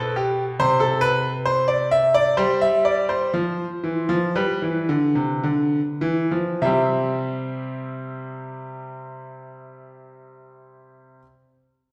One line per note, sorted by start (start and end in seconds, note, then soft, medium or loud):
0.00 0.54 B2 loud
0.00 0.15 A4 medium
0.16 0.43 G4 medium
0.59 2.34 C3 medium
0.59 0.80 C5 loud
0.80 1.01 A4 medium
1.01 1.29 B4 loud
1.45 1.68 C5 loud
1.68 1.90 D5 medium
1.91 2.14 E5 loud
2.14 2.37 D5 loud
2.37 3.30 G3 medium
2.37 2.60 C5 medium
2.61 2.84 E5 medium
2.85 3.08 D5 medium
3.09 4.30 C5 medium
3.34 3.64 F3 medium
3.84 4.08 E3 medium
4.09 4.34 F3 medium
4.36 4.60 G3 medium
4.36 6.57 B4 medium
4.62 4.87 E3 medium
4.89 5.15 D3 medium
5.15 5.42 C3 medium
5.44 5.79 D3 medium
6.01 6.29 E3 medium
6.31 6.60 F3 medium
6.62 11.18 C3 medium
6.62 11.22 G3 medium
6.62 11.21 C4 medium
6.62 11.18 E5 medium